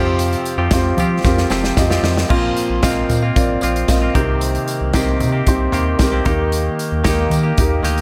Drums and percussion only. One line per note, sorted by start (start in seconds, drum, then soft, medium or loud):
0.19 closed hi-hat medium
0.19 tambourine soft
0.33 closed hi-hat soft
0.45 closed hi-hat medium
0.45 tambourine soft
0.71 kick loud
0.71 snare loud
0.71 closed hi-hat medium
0.71 tambourine medium
0.98 closed hi-hat medium
0.98 floor tom medium
0.98 tambourine medium
1.25 kick loud
1.25 snare medium
1.25 tambourine soft
1.38 snare soft
1.50 snare medium
1.50 tambourine medium
1.64 snare medium
1.77 kick loud
1.77 snare medium
1.77 tambourine medium
1.91 snare medium
2.04 snare loud
2.17 snare medium
2.30 kick loud
2.30 crash medium
2.57 closed hi-hat medium
2.57 tambourine soft
2.83 kick loud
2.83 snare loud
2.83 closed hi-hat medium
2.83 tambourine medium
3.10 closed hi-hat medium
3.10 floor tom medium
3.10 tambourine medium
3.36 kick loud
3.36 closed hi-hat medium
3.36 tambourine soft
3.61 closed hi-hat medium
3.61 tambourine medium
3.76 closed hi-hat soft
3.88 kick loud
3.88 snare medium
3.88 closed hi-hat medium
3.88 tambourine medium
4.15 kick loud
4.15 closed hi-hat medium
4.15 tambourine soft
4.41 closed hi-hat medium
4.55 closed hi-hat soft
4.68 closed hi-hat medium
4.68 tambourine soft
4.93 kick loud
4.93 snare loud
4.93 closed hi-hat medium
4.93 tambourine medium
5.20 closed hi-hat medium
5.20 floor tom medium
5.20 tambourine soft
5.47 kick medium
5.47 closed hi-hat medium
5.47 tambourine soft
5.72 closed hi-hat medium
5.72 floor tom medium
5.72 tambourine soft
5.99 kick loud
5.99 snare medium
5.99 closed hi-hat medium
5.99 tambourine medium
6.25 kick loud
6.25 closed hi-hat medium
6.25 tambourine soft
6.52 closed hi-hat medium
6.52 tambourine soft
6.79 closed hi-hat medium
6.79 tambourine soft
7.04 kick loud
7.04 snare loud
7.04 closed hi-hat medium
7.04 tambourine medium
7.31 closed hi-hat medium
7.31 floor tom medium
7.31 tambourine medium
7.58 kick loud
7.58 closed hi-hat medium
7.58 tambourine soft
7.84 closed hi-hat medium
7.84 tambourine soft
7.98 closed hi-hat soft